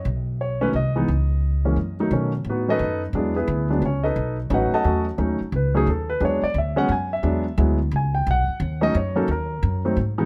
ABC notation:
X:1
M:3/4
L:1/8
Q:"Swing" 1/4=176
K:Bmix
V:1 name="Grand piano"
z2 c B d2- | d4- d z | z2 [B,DFB] [DABd]2 z | [EG] [B,EGB]2 z [Cc] [DABd]- |
[DABd] z [FBdf] [Adfa]2 z | z2 B G A B | c =d e f g e- | e2 z2 g =g |
f3 d c A | ^A3 z3 |]
V:2 name="Grand piano"
z3 [D,F,A,C] z [E,G,B,D] | z3 [E,G,^A,C] z [D,F,=A,D] | [D,F,A,C] z2 [D,F,A,C] z2 | [F,G,B,=D] z2 [F,G,B,D] z2 |
z2 [F,A,CD]2 [F,A,CF] z | [F,A,CD] z2 [F,A,CD] z2 | [F,G,B,=D] z2 [F,G,B,C] z2 | [F,G,B,=D] z [F,G,B,E] z3 |
z3 [F,A,CD] z [F,^A,CD] | z3 [F,A,=CD] z [E,G,B,D] |]
V:3 name="Upright bass" clef=bass
B,,,4 =C,,2 | C,,4 F,,2 | B,,2 A,,2 F,,2 | E,,2 =D,,2 C,,2 |
B,,,2 A,,, z E,,2 | D,, z C,,2 D,,2 | E,, z =D,,2 F,,2 | E,,2 =D,,2 C,,2 |
B,,, z D,,2 F,,2 | D,,2 F,,2 G,,2 |]